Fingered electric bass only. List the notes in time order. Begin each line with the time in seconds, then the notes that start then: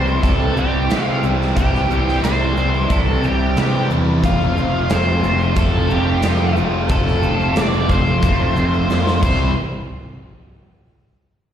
Already playing: C2
0.23 C2
0.57 C2
0.90 C3
1.23 C2
1.57 C2
1.90 C2
2.23 C2
2.57 C2
2.90 C2
3.23 C2
3.57 C3
3.90 E2
4.23 F1
4.57 F1
4.90 F1
5.23 F1
5.57 F1
5.90 F1
6.23 F2
6.57 F1
6.89 F1
7.22 F1
7.56 F1
7.89 F1
8.23 F1
8.56 F1
8.89 F2
9.22 C2